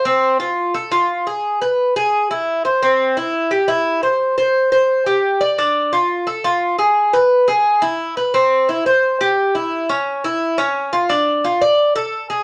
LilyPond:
\new Staff \with { instrumentName = "Cuban tres" } { \time 4/4 \key c \major \tempo 4 = 174 c'4 f'4 a'8 f'4 gis'8~ | gis'8 b'4 gis'4 e'4 c''8 | c'4 e'4 g'8 e'4 c''8~ | c''8 c''4 c''4 g'4 d''8 |
d'4 f'4 a'8 f'4 gis'8~ | gis'8 b'4 gis'4 e'4 b'8 | c'4 e'8 c''4 g'4 e'8~ | e'8 cis'4 e'4 cis'4 f'8 |
d'4 f'8 d''4 a'4 gis'8 | }